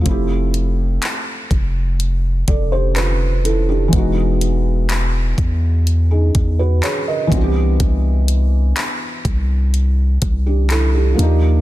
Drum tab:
HH |xxxxxxxx|xxxxxxxx|xxxxxxxx|
CP |--x---x-|--x---x-|--x---x-|
BD |o--o-o--|o--o-o-o|o--o-o--|